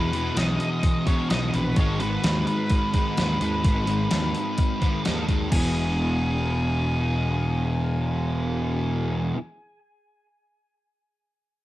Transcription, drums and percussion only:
0.13 open hi-hat
0.37 snare, open hi-hat
0.60 open hi-hat
0.83 kick, open hi-hat
1.07 kick, open hi-hat
1.30 snare, open hi-hat
1.54 open hi-hat
1.76 kick, open hi-hat
2.00 open hi-hat
2.24 snare, open hi-hat
2.47 open hi-hat
2.70 kick, open hi-hat
2.94 kick, open hi-hat
3.17 snare, open hi-hat
3.41 open hi-hat
3.64 kick, open hi-hat
3.87 open hi-hat
4.11 snare, open hi-hat
4.35 open hi-hat
4.58 kick, open hi-hat
4.82 kick, open hi-hat
5.05 snare, open hi-hat
5.29 kick, open hi-hat
5.52 kick, crash

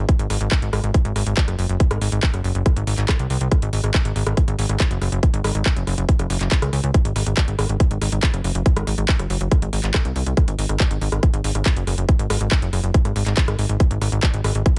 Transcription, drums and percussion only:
0.09 kick, closed hi-hat
0.19 closed hi-hat
0.30 cross-stick, open hi-hat
0.41 closed hi-hat
0.52 kick, clap, closed hi-hat
0.62 closed hi-hat
0.73 cross-stick, open hi-hat
0.84 closed hi-hat
0.94 kick, closed hi-hat
1.05 closed hi-hat
1.16 cross-stick, open hi-hat
1.26 closed hi-hat
1.37 kick, clap, closed hi-hat
1.48 cross-stick, closed hi-hat
1.59 open hi-hat
1.69 closed hi-hat
1.80 kick, closed hi-hat
1.91 cross-stick, closed hi-hat
2.01 open hi-hat
2.12 closed hi-hat
2.23 kick, clap, closed hi-hat
2.34 cross-stick, closed hi-hat
2.44 open hi-hat
2.55 closed hi-hat
2.66 kick, cross-stick, closed hi-hat
2.77 closed hi-hat
2.87 open hi-hat
2.98 clap, closed hi-hat
3.09 kick, cross-stick, clap, closed hi-hat
3.19 closed hi-hat
3.30 open hi-hat
3.41 closed hi-hat
3.52 kick, cross-stick, closed hi-hat
3.62 closed hi-hat
3.73 open hi-hat
3.84 cross-stick, closed hi-hat
3.94 kick, clap, closed hi-hat
4.05 closed hi-hat
4.16 open hi-hat
4.27 cross-stick, closed hi-hat
4.37 kick, closed hi-hat
4.48 closed hi-hat
4.59 open hi-hat
4.69 cross-stick, closed hi-hat
4.80 kick, clap, closed hi-hat
4.91 closed hi-hat
5.02 cross-stick, open hi-hat
5.12 closed hi-hat
5.23 kick, closed hi-hat
5.34 closed hi-hat
5.44 cross-stick, open hi-hat
5.55 closed hi-hat
5.66 kick, clap, closed hi-hat
5.77 closed hi-hat
5.87 cross-stick, open hi-hat
5.98 closed hi-hat
6.09 kick, closed hi-hat
6.19 cross-stick, closed hi-hat
6.30 open hi-hat
6.41 clap, closed hi-hat
6.52 kick, clap, closed hi-hat
6.62 cross-stick, closed hi-hat
6.73 open hi-hat
6.84 closed hi-hat
6.94 kick, closed hi-hat
7.05 closed hi-hat
7.16 cross-stick, open hi-hat
7.27 closed hi-hat
7.37 kick, clap, closed hi-hat
7.48 closed hi-hat
7.59 cross-stick, open hi-hat
7.69 closed hi-hat
7.80 kick, closed hi-hat
7.91 closed hi-hat
8.02 cross-stick, open hi-hat
8.12 closed hi-hat
8.23 kick, clap, closed hi-hat
8.34 cross-stick, closed hi-hat
8.44 open hi-hat
8.55 closed hi-hat
8.66 kick, closed hi-hat
8.77 cross-stick, closed hi-hat
8.87 open hi-hat
8.98 closed hi-hat
9.09 kick, clap, closed hi-hat
9.19 cross-stick, closed hi-hat
9.30 open hi-hat
9.41 closed hi-hat
9.52 kick, cross-stick, closed hi-hat
9.62 closed hi-hat
9.73 open hi-hat
9.84 clap, closed hi-hat
9.94 kick, cross-stick, clap, closed hi-hat
10.05 closed hi-hat
10.16 open hi-hat
10.26 closed hi-hat
10.37 kick, cross-stick, closed hi-hat
10.48 closed hi-hat
10.59 open hi-hat
10.69 cross-stick, closed hi-hat
10.80 kick, clap, closed hi-hat
10.91 closed hi-hat
11.01 open hi-hat
11.12 cross-stick, closed hi-hat
11.23 kick, closed hi-hat
11.34 closed hi-hat
11.44 open hi-hat
11.55 cross-stick, closed hi-hat
11.66 kick, clap, closed hi-hat
11.76 closed hi-hat
11.87 cross-stick, open hi-hat
11.98 closed hi-hat
12.09 kick, closed hi-hat
12.19 closed hi-hat
12.30 cross-stick, open hi-hat
12.41 closed hi-hat
12.52 kick, clap, closed hi-hat
12.62 closed hi-hat
12.73 cross-stick, open hi-hat
12.84 closed hi-hat
12.94 kick, closed hi-hat
13.05 cross-stick, closed hi-hat
13.16 open hi-hat
13.27 clap, closed hi-hat
13.37 kick, clap, closed hi-hat
13.48 cross-stick, closed hi-hat
13.59 open hi-hat
13.69 closed hi-hat
13.80 kick, closed hi-hat
13.91 closed hi-hat
14.02 cross-stick, open hi-hat
14.12 closed hi-hat
14.23 kick, clap, closed hi-hat
14.34 closed hi-hat
14.44 cross-stick, open hi-hat
14.55 closed hi-hat
14.66 kick, closed hi-hat

